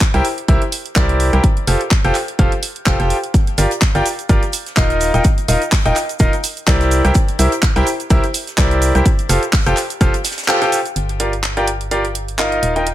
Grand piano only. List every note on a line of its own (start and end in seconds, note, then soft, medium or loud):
0.14 0.23 E4 medium
0.14 0.23 G4 medium
0.14 0.23 A#4 medium
0.14 0.23 C5 medium
0.14 0.23 G5 loud
0.48 0.60 E4 medium
0.48 0.60 G4 medium
0.48 0.60 A#4 medium
0.48 0.60 C5 medium
0.48 0.60 E5 loud
0.96 1.30 E4 medium
0.96 1.30 G4 medium
0.96 1.30 A#4 medium
0.96 1.30 C5 medium
0.96 1.30 D5 loud
1.33 1.42 E4 medium
1.33 1.42 G4 medium
1.33 1.42 A#4 medium
1.33 1.42 C5 medium
1.33 1.42 G5 medium
1.67 1.79 F4 medium
1.67 1.79 G4 medium
1.67 1.79 A4 medium
1.67 1.79 C5 medium
1.67 1.79 F5 medium
2.05 2.14 F4 medium
2.05 2.14 G4 medium
2.05 2.14 A4 medium
2.05 2.14 C5 medium
2.05 2.14 G5 loud
2.39 2.50 F4 medium
2.39 2.50 G4 medium
2.39 2.50 A4 medium
2.39 2.50 C5 medium
2.39 2.50 F5 loud
2.86 2.97 F4 medium
2.86 2.97 G4 medium
2.86 2.97 A4 medium
2.86 2.97 C5 medium
2.86 2.97 G5 loud
3.00 3.15 F4 medium
3.00 3.15 G4 medium
3.00 3.15 A4 medium
3.00 3.15 C5 medium
3.00 3.15 G5 medium
3.58 3.69 F4 medium
3.58 3.69 G4 medium
3.58 3.69 A#4 medium
3.58 3.69 D5 medium
3.58 3.69 F5 medium
3.95 4.04 F4 loud
3.95 4.04 G4 medium
3.95 4.04 A#4 medium
3.95 4.04 D5 medium
3.95 4.04 G5 loud
4.29 4.41 F4 medium
4.29 4.41 G4 medium
4.29 4.41 A#4 medium
4.29 4.41 D5 medium
4.29 4.41 F5 medium
4.77 5.11 D#4 medium
4.77 5.11 F4 medium
4.77 5.11 A#4 medium
4.77 5.11 D#5 medium
4.77 5.11 F5 loud
5.14 5.23 D#4 medium
5.14 5.23 F4 medium
5.14 5.23 A#4 medium
5.14 5.23 D#5 medium
5.14 5.23 G5 medium
5.48 5.60 D#4 medium
5.48 5.60 F4 medium
5.48 5.60 A#4 medium
5.48 5.60 D#5 medium
5.48 5.60 F5 medium
5.86 5.95 D#4 medium
5.86 5.95 F4 medium
5.86 5.95 A#4 medium
5.86 5.95 D#5 medium
5.86 5.95 G5 loud
6.20 6.31 D#4 medium
6.20 6.31 F4 medium
6.20 6.31 A#4 medium
6.20 6.31 D#5 medium
6.20 6.31 F5 loud
6.67 7.01 E4 medium
6.67 7.01 G4 medium
6.67 7.01 A#4 medium
6.67 7.01 C5 medium
6.67 7.01 D5 loud
7.05 7.14 E4 medium
7.05 7.14 G4 medium
7.05 7.14 A#4 medium
7.05 7.14 C5 medium
7.05 7.14 G5 medium
7.39 7.50 E4 medium
7.39 7.50 G4 medium
7.39 7.50 A#4 medium
7.39 7.50 C5 medium
7.39 7.50 E5 medium
7.76 7.85 E4 loud
7.76 7.85 G4 medium
7.76 7.85 A#4 medium
7.76 7.85 C5 medium
7.76 7.85 G5 loud
8.10 8.22 E4 medium
8.10 8.22 G4 medium
8.10 8.22 A#4 medium
8.10 8.22 C5 medium
8.10 8.22 E5 loud
8.58 8.92 E4 medium
8.58 8.92 G4 medium
8.58 8.92 A#4 medium
8.58 8.92 C5 medium
8.58 8.92 D5 loud
8.95 9.04 E4 medium
8.95 9.04 G4 medium
8.95 9.04 A#4 medium
8.95 9.04 C5 medium
8.95 9.04 G5 medium
9.29 9.41 F4 medium
9.29 9.41 G4 medium
9.29 9.41 A4 medium
9.29 9.41 C5 medium
9.29 9.41 F5 medium
9.66 9.76 F4 medium
9.66 9.76 G4 medium
9.66 9.76 A4 medium
9.66 9.76 C5 medium
9.66 9.76 G5 loud
10.01 10.12 F4 medium
10.01 10.12 G4 medium
10.01 10.12 A4 medium
10.01 10.12 C5 medium
10.01 10.12 F5 loud
10.48 10.59 F4 medium
10.48 10.59 G4 medium
10.48 10.59 A4 medium
10.48 10.59 C5 medium
10.48 10.59 G5 loud
10.62 10.77 F4 medium
10.62 10.77 G4 medium
10.62 10.77 A4 medium
10.62 10.77 C5 medium
10.62 10.77 G5 loud
11.20 11.31 F4 medium
11.20 11.31 G4 medium
11.20 11.31 A#4 medium
11.20 11.31 D5 medium
11.20 11.31 F5 medium
11.57 11.66 F4 medium
11.57 11.66 G4 medium
11.57 11.66 A#4 medium
11.57 11.66 D5 medium
11.57 11.66 G5 medium
11.91 12.03 F4 medium
11.91 12.03 G4 medium
11.91 12.03 A#4 medium
11.91 12.03 D5 medium
11.91 12.03 F5 medium
12.39 12.73 D#4 medium
12.39 12.73 F4 medium
12.39 12.73 A#4 medium
12.39 12.73 D#5 medium
12.39 12.73 F5 medium
12.76 12.85 D#4 medium
12.76 12.85 F4 medium
12.76 12.85 A#4 medium
12.76 12.85 D#5 medium
12.76 12.85 G5 medium